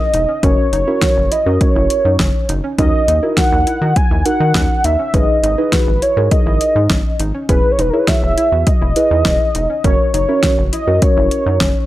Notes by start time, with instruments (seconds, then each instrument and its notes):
Already playing: soft synth lead D#5
0.14 analog synth bass E1, synth arpeggio sound D#4, closed hi-hat
0.29 synth arpeggio sound C#4
0.43 analog synth bass F#1, synth keys C#4 F#4 A#4, synth arpeggio sound C#4, soft synth lead C#5, kick, closed hi-hat
0.73 analog synth bass F#1, synth arpeggio sound D#4, soft synth lead C#5, closed hi-hat
0.87 synth keys C#4 F#4 A#4, synth arpeggio sound E4
1.02 synth arpeggio sound F#4, kick, snare, closed hi-hat
1.17 analog synth bass F#1
1.31 synth arpeggio sound E4, soft synth lead D#5, closed hi-hat
1.46 analog synth bass F#2, synth keys C#4 F#4 A#4, synth arpeggio sound F#4
1.61 soft synth lead C#5, kick, closed hi-hat
1.76 analog synth bass F#1, synth arpeggio sound E4
1.90 closed hi-hat
2.05 analog synth bass F#2, synth arpeggio sound D#4
2.19 analog synth bass F#1, synth arpeggio sound C#4, kick, snare, closed hi-hat
2.49 analog synth bass F#1, synth arpeggio sound D#4, closed hi-hat
2.64 synth arpeggio sound C#4
2.78 analog synth bass D#2, synth arpeggio sound C#4, synth keys D#4 F#4 A#4, soft synth lead D#5, kick, closed hi-hat
3.08 analog synth bass D#2, synth arpeggio sound D#4, closed hi-hat
3.23 synth keys D#4 F#4 A#4, synth arpeggio sound E4
3.37 synth arpeggio sound F#4, soft synth lead F#5, kick, snare, closed hi-hat
3.52 analog synth bass D#2
3.67 synth arpeggio sound E4, closed hi-hat
3.82 analog synth bass D#3, synth arpeggio sound F#4
3.96 soft synth lead G#5, kick, closed hi-hat
4.11 analog synth bass D#2, synth arpeggio sound E4
4.25 synth keys D#4 F#4 A#4, soft synth lead F#5, closed hi-hat
4.40 analog synth bass D#3, synth arpeggio sound D#4
4.55 analog synth bass D#2, synth arpeggio sound C#4, kick, snare, closed hi-hat
4.84 analog synth bass D#2, synth arpeggio sound D#4, soft synth lead E5, closed hi-hat
4.99 synth arpeggio sound C#4
5.14 analog synth bass G#1, synth arpeggio sound C#4, synth keys D#4 G#4 B4, soft synth lead D#5, kick, closed hi-hat
5.43 analog synth bass G#1, synth arpeggio sound D#4, soft synth lead D#5, closed hi-hat
5.58 synth keys D#4 G#4 B4, synth arpeggio sound E4
5.72 synth arpeggio sound F#4, soft synth lead B4, kick, snare, closed hi-hat
5.87 analog synth bass G#1
6.02 synth arpeggio sound E4, soft synth lead C#5, closed hi-hat
6.17 analog synth bass G#2, synth keys D#4 G#4 A#4, synth arpeggio sound F#4
6.31 soft synth lead D#5, kick, closed hi-hat
6.46 analog synth bass G#1, synth arpeggio sound E4
6.61 closed hi-hat
6.76 analog synth bass G#2, synth arpeggio sound D#4
6.90 analog synth bass G#1, synth arpeggio sound C#4, kick, snare, closed hi-hat
7.20 analog synth bass G#1, synth arpeggio sound D#4, closed hi-hat
7.34 synth arpeggio sound C#4
7.49 analog synth bass E1, synth arpeggio sound C#4, synth keys E4 G#4 B4, soft synth lead B4, kick, closed hi-hat
7.71 soft synth lead C#5
7.79 analog synth bass E1, synth arpeggio sound D#4, soft synth lead B4, closed hi-hat
7.90 synth arpeggio sound E4, synth keys E4 G#4 C#5, soft synth lead A#4
7.99 soft synth lead B4
8.08 synth arpeggio sound F#4, soft synth lead E5, kick, snare, closed hi-hat
8.23 analog synth bass E1
8.37 synth arpeggio sound E4, closed hi-hat
8.52 analog synth bass E2, synth arpeggio sound F#4
8.67 soft synth lead D#5, kick, closed hi-hat
8.81 analog synth bass E1, synth arpeggio sound E4
8.96 synth keys E4 G#4 B4, closed hi-hat
9.11 analog synth bass E2, synth arpeggio sound D#4
9.25 analog synth bass E1, synth arpeggio sound C#4, kick, snare, closed hi-hat
9.55 analog synth bass E1, synth arpeggio sound D#4, closed hi-hat
9.70 synth arpeggio sound C#4
9.84 analog synth bass F#1, synth keys C#4 F#4 A#4, synth arpeggio sound C#4, soft synth lead C#5, kick, closed hi-hat
10.14 analog synth bass F#1, synth arpeggio sound D#4, soft synth lead C#5, closed hi-hat
10.28 synth keys C#4 F#4 A#4, synth arpeggio sound E4
10.43 synth arpeggio sound F#4, kick, snare, closed hi-hat
10.58 analog synth bass F#1
10.73 synth arpeggio sound E4, soft synth lead D#5, closed hi-hat
10.87 analog synth bass F#2, synth keys C#4 F#4 A#4, synth arpeggio sound F#4
11.02 soft synth lead C#5, kick, closed hi-hat
11.17 analog synth bass F#1, synth arpeggio sound E4
11.31 closed hi-hat
11.46 analog synth bass F#2, synth arpeggio sound D#4
11.61 analog synth bass F#1, synth arpeggio sound C#4, kick, snare, closed hi-hat